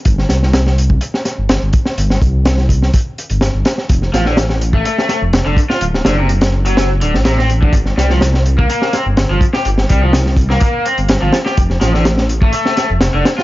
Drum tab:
HH |x-x-x-x-x-x-x-x-|x-x-x-x-x-xxx-x-|x-x-x-x-x-x-x-x-|x-x-xx-xx-x-x-x-|
SD |-ooooo---oo-o--o|-o--oo-o----o-oo|-ooooo---oo-o--o|-oo--o--o--ooo--|
BD |o------o------o-|--o---o-o-------|o------o------o-|---------------o|

HH |x-x-x-x-x-x-x-x-|x-x-x-x-x-xxx-x-|x-x-x-x-x-x-x-x-|
SD |-ooooo---oo-o--o|-o--oo-o----o-oo|-ooooo---oo-o-oo|
BD |o------o------o-|--o---o-o-------|o------o--------|